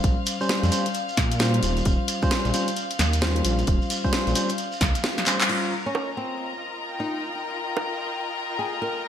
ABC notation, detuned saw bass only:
X:1
M:4/4
L:1/16
Q:"Swing 16ths" 1/4=132
K:Bbdor
V:1 name="Detuned saw bass" clef=bass
B,,, z4 F,, z4 B,,4 E,,,2 | E,,, z4 B,,, z4 E,,4 B,,,2 | E,,, z4 B,,, z4 D,, z4 z | z16 |
z16 |]